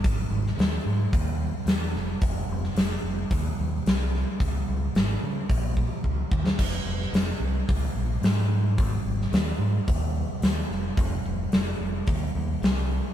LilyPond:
<<
  \new Staff \with { instrumentName = "Fingered electric bass" } { \clef bass \time 4/4 \key f \minor \tempo 4 = 110 aes,,8 aes,,8 ees,8 aes,8 ees,4 e,8 f,,8 | f,,8 f,,8 f,,8 f,,8 ees,8 ees,8 c,4 | des,8 des,8 aes,,8 des8 bes,,4 des,8 ees,8 | f,,8 f,,8 f,,8 c,8 des,8 bes,,8 aes,4 |
aes,,8 aes,,8 ees,8 aes,8 ees,4 ees,8 f,,8 | f,,8 f,,8 f,,8 f,,8 ees,8 ees,8 c,4 | }
  \new DrumStaff \with { instrumentName = "Drums" } \drummode { \time 4/4 <hho bd>8. sn16 <hho sn>4 <hho bd>4 <hho sn>8 sn8 | <hho bd>8. sn16 <hho sn>4 <hho bd>4 <hho sn>8 sn8 | <hho bd>4 <hho sn>4 <hho bd>8 bd8 bd8 bd16 sn16 | <cymc hho bd>8. sn16 <hho sn>4 <hho bd>4 <hho sn>4 |
<hho bd>8. sn16 <hho sn>4 <hho bd>4 <hho sn>8 sn8 | <hho bd>4 <hho sn>4 <hho bd>4 <hho sn>4 | }
>>